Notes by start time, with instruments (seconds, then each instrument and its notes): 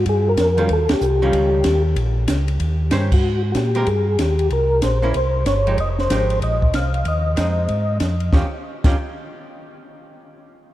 0.06 tonewheel organ G2 G#4, kick, ride
0.29 tonewheel organ A#4
0.37 tonewheel organ F2, kick, snare, hi-hat pedal, ride
0.57 hollow-body jazz guitar D#3 G3 C#4 F4, tonewheel organ A#4, ride
0.69 tonewheel organ D#2, kick, ride
0.73 tonewheel organ A4
0.89 tonewheel organ D#2 G4, snare, ride
1.01 tonewheel organ C2, hi-hat pedal
1.22 hollow-body jazz guitar D#3 G3 C#4 F4
1.33 tonewheel organ C#2, kick, ride
1.64 tonewheel organ D#2, kick, snare, hi-hat pedal, ride
1.96 tonewheel organ A#1, kick, ride
2.28 tonewheel organ C#2, kick, snare, hi-hat pedal, ride
2.48 ride
2.60 tonewheel organ D#2, kick, ride
2.91 tonewheel organ G2, hollow-body jazz guitar D#3 C#4 G4 C5, kick, snare, hi-hat pedal, ride
3.12 tonewheel organ F#4, kick, crash
3.23 tonewheel organ G#2
3.52 tonewheel organ A#2 F#4, kick, snare, hi-hat pedal, ride
3.57 tonewheel organ G4
3.75 hollow-body jazz guitar G#3 C4 G4 A#4, ride
3.87 tonewheel organ G2 G#4, kick, ride
4.19 tonewheel organ D#2 G4, kick, snare, hi-hat pedal, ride
4.39 ride
4.50 tonewheel organ C2 A#4, kick, ride
4.82 tonewheel organ A#1 C5, kick, snare, hi-hat pedal, ride
5.02 hollow-body jazz guitar A#3 C#4 E4
5.14 tonewheel organ C2 C5, kick, ride
5.46 tonewheel organ G1 C#5, kick, snare, hi-hat pedal, ride
5.67 hollow-body jazz guitar F3 G#3 D#4 G4, ride
5.78 tonewheel organ F1 D#5, kick, ride
5.99 tonewheel organ C5, snare
6.10 tonewheel organ G#1, hollow-body jazz guitar F3 G#3 D#4 G4, kick, snare, hi-hat pedal, ride
6.30 ride
6.42 tonewheel organ A#1 D#5, kick, ride
6.62 kick
6.74 tonewheel organ C2 F5, kick, snare, hi-hat pedal, ride
6.94 ride
7.05 tonewheel organ D#2 D#5, kick, ride
7.36 tonewheel organ F2, hollow-body jazz guitar G#3 C4 D#4, kick, snare, hi-hat pedal, ride
7.69 tonewheel organ G#2, kick, ride
8.00 tonewheel organ F2, kick, snare, hi-hat pedal, ride
8.20 ride
8.32 tonewheel organ D#2, hollow-body jazz guitar D#3 C#4 F4 G4, kick, snare
8.84 tonewheel organ D#2, hollow-body jazz guitar D#3 C#4 F4 G4, kick, snare, crash